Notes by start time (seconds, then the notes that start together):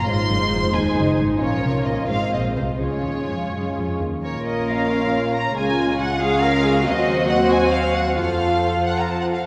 Already playing: F4
0.08 G#1 G#2 G#3 D#4 C5 C6
0.30 F#1 F#2
0.51 F1 F2
0.73 D#2 D#4 G#5
0.95 F#1 F#2
1.17 G#1 G#2
1.39 A#1 A#2 F3 C#4 F4 A#4 C#5
1.63 C2 C3
1.85 A#1 A#2 D#5
2.09 G#1 G#2 G#3 C4 C5 F5
2.33 A#1 A#2 D#5
2.56 C2 C3 C5
2.80 C#2 C#3 G#3 C#4 F4 G#4 C#5
3.04 D#2 D#3
3.28 F2 F3
3.52 F#2 F#3
3.76 F2 F3
4.00 D#2 D#3
4.23 A#1 A#3 C#4 F4 A#4 C#5
4.46 D#5
4.68 F5
5.33 A#5
5.55 C#2 G#3 C#4 F4 G#4 G#5
6.00 F#5
6.20 G#3 C#4 F4 G#4 F5
6.42 A#4
6.53 A#4
6.64 G#4
6.85 D#2 F#3 C4 F#4 C5 D#5
7.29 F#5
7.51 G#5
7.73 F#4 F5
7.96 F#5
8.17 F2 F3 F4 A4 C5 F5
8.86 F#5
8.99 A#5
9.08 A5
9.21 F#5
9.32 F5